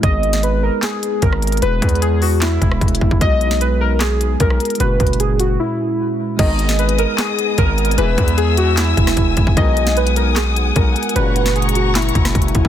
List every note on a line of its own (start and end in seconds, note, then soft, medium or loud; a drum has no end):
0.01 0.70 G#1 loud
0.01 1.58 G#3 medium
0.01 1.59 B3 medium
0.01 1.60 D#4 medium
0.01 0.41 D#5 loud
0.01 kick loud
0.01 closed hi-hat medium
0.06 1.61 G#4 medium
0.23 closed hi-hat soft
0.33 snare medium
0.33 closed hi-hat medium
0.43 0.62 B4 medium
0.43 closed hi-hat medium
0.63 0.82 A#4 medium
0.83 1.20 G#4 medium
0.83 snare loud
0.83 clap medium
0.83 closed hi-hat medium
1.03 closed hi-hat medium
1.22 1.61 G#1 loud
1.22 1.60 A#4 medium
1.22 kick medium
1.22 closed hi-hat medium
1.33 cross-stick medium
1.42 closed hi-hat medium
1.47 closed hi-hat medium
1.52 closed hi-hat medium
1.57 3.17 G#3 medium
1.57 closed hi-hat medium
1.62 1.81 E1 loud
1.62 3.18 B3 medium
1.62 3.19 E4 medium
1.62 3.19 G#4 medium
1.62 2.00 B4 loud
1.62 closed hi-hat medium
1.82 2.58 E2 loud
1.82 kick medium
1.82 closed hi-hat medium
1.89 closed hi-hat medium
1.95 closed hi-hat soft
2.02 2.20 G#4 medium
2.02 closed hi-hat medium
2.22 2.40 F#4 medium
2.22 open hi-hat medium
2.41 3.17 E4 medium
2.41 snare loud
2.41 clap loud
2.41 closed hi-hat medium
2.62 2.81 E1 loud
2.62 kick medium
2.62 closed hi-hat medium
2.72 cross-stick loud
2.81 3.00 E1 loud
2.81 kick medium
2.81 closed hi-hat soft
2.88 closed hi-hat medium
2.95 closed hi-hat medium
3.01 3.11 E1 loud
3.01 kick medium
3.11 3.21 E1 loud
3.11 kick medium
3.19 4.36 B1 loud
3.19 4.76 G#3 medium
3.19 4.77 B3 medium
3.19 4.77 D#4 medium
3.19 3.59 D#5 loud
3.19 kick loud
3.19 closed hi-hat medium
3.24 4.78 F#4 medium
3.41 closed hi-hat soft
3.51 snare medium
3.51 closed hi-hat medium
3.61 3.80 B4 medium
3.61 closed hi-hat medium
3.81 3.99 A#4 medium
4.01 4.38 G#4 medium
4.01 snare loud
4.01 clap loud
4.01 closed hi-hat medium
4.21 closed hi-hat medium
4.40 4.59 B1 loud
4.40 4.78 A#4 medium
4.40 kick medium
4.40 closed hi-hat medium
4.50 cross-stick medium
4.60 closed hi-hat medium
4.65 closed hi-hat medium
4.70 closed hi-hat medium
4.75 6.35 G#3 medium
4.75 closed hi-hat medium
4.79 4.99 F#1 loud
4.79 6.36 A#2 medium
4.79 6.36 C#4 medium
4.79 6.37 F#4 medium
4.79 5.17 B4 loud
4.79 closed hi-hat medium
5.00 5.57 F#1 loud
5.00 kick medium
5.00 closed hi-hat medium
5.07 closed hi-hat medium
5.13 closed hi-hat medium
5.20 5.38 G#4 medium
5.20 closed hi-hat medium
5.40 5.58 F#4 medium
5.40 closed hi-hat medium
5.59 6.35 E4 medium
6.37 7.06 G#1 loud
6.37 6.67 G#2 loud
6.37 6.67 B2 loud
6.37 6.67 D#3 loud
6.37 7.94 G#3 medium
6.37 7.94 B3 medium
6.37 11.12 B3 medium
6.37 7.95 D#4 medium
6.37 7.96 D#5 medium
6.37 6.76 D#5 loud
6.37 12.68 G#5 medium
6.37 7.96 D#6 medium
6.37 kick loud
6.37 closed hi-hat medium
6.37 crash loud
6.42 7.96 G#4 medium
6.59 closed hi-hat medium
6.69 snare medium
6.79 6.97 B4 medium
6.79 closed hi-hat medium
6.89 closed hi-hat medium
6.99 7.17 A#4 medium
6.99 closed hi-hat medium
7.18 7.56 G#4 medium
7.18 snare loud
7.18 clap loud
7.18 closed hi-hat medium
7.39 closed hi-hat medium
7.58 7.96 G#1 loud
7.58 7.96 A#4 medium
7.58 kick medium
7.58 closed hi-hat medium
7.78 closed hi-hat soft
7.78 open hi-hat medium
7.85 closed hi-hat medium
7.91 closed hi-hat medium
7.96 8.17 E1 loud
7.96 8.26 G#2 loud
7.96 8.26 B2 medium
7.96 8.26 E3 loud
7.96 9.53 G#3 medium
7.96 9.53 B3 medium
7.96 9.54 E4 medium
7.96 8.35 B4 loud
7.96 9.55 E5 medium
7.96 9.55 E6 loud
7.96 closed hi-hat medium
8.01 9.55 G#4 medium
8.18 8.94 E2 loud
8.18 kick medium
8.18 closed hi-hat medium
8.28 closed hi-hat medium
8.37 8.56 G#4 medium
8.37 closed hi-hat medium
8.57 8.76 F#4 medium
8.57 closed hi-hat medium
8.77 9.53 E4 medium
8.77 snare loud
8.77 clap loud
8.77 closed hi-hat medium
8.97 9.16 E1 loud
8.97 kick medium
8.97 closed hi-hat medium
9.07 cross-stick loud
9.07 snare medium
9.17 9.36 E1 loud
9.17 kick medium
9.17 closed hi-hat medium
9.37 9.46 E1 loud
9.37 kick medium
9.37 closed hi-hat medium
9.47 9.57 E1 loud
9.47 kick loud
9.54 10.72 B1 loud
9.54 9.85 G#2 loud
9.54 9.85 B2 medium
9.54 9.85 D#3 loud
9.54 11.11 G#3 medium
9.54 11.12 B3 medium
9.54 11.13 D#4 medium
9.54 9.94 D#5 loud
9.54 12.68 F#5 medium
9.54 11.14 D#6 loud
9.54 kick loud
9.54 closed hi-hat medium
9.60 11.14 F#4 medium
9.77 closed hi-hat medium
9.87 snare medium
9.97 10.15 B4 medium
9.97 closed hi-hat medium
10.07 closed hi-hat medium
10.16 10.35 A#4 medium
10.16 closed hi-hat medium
10.36 10.74 G#4 medium
10.36 snare loud
10.36 clap loud
10.36 closed hi-hat medium
10.56 closed hi-hat medium
10.76 10.95 B1 loud
10.76 11.14 A#4 medium
10.76 kick medium
10.76 closed hi-hat medium
10.96 closed hi-hat soft
10.96 open hi-hat medium
11.03 closed hi-hat medium
11.09 closed hi-hat medium
11.13 12.11 F#1 loud
11.13 11.44 G#2 medium
11.13 12.68 A#2 medium
11.13 11.44 A#2 loud
11.13 11.44 C#3 loud
11.13 12.68 G#3 medium
11.13 12.68 C#4 medium
11.13 11.53 B4 loud
11.13 12.68 A#5 medium
11.13 12.68 C#6 medium
11.13 closed hi-hat medium
11.19 12.68 F#4 medium
11.36 closed hi-hat medium
11.46 snare medium
11.56 11.74 G#4 medium
11.56 closed hi-hat soft
11.62 closed hi-hat medium
11.69 closed hi-hat medium
11.75 11.94 F#4 medium
11.75 closed hi-hat medium
11.95 12.68 E4 medium
11.95 snare loud
11.95 clap loud
11.95 closed hi-hat medium
12.02 closed hi-hat medium
12.09 closed hi-hat medium
12.15 12.34 F#1 loud
12.15 kick medium
12.15 closed hi-hat medium
12.25 cross-stick loud
12.25 snare medium
12.25 closed hi-hat soft
12.35 12.54 F#1 loud
12.35 kick medium
12.35 closed hi-hat medium
12.42 closed hi-hat medium
12.48 closed hi-hat medium
12.55 12.64 F#1 loud
12.55 kick medium
12.55 closed hi-hat medium
12.65 12.68 F#1 loud
12.65 kick loud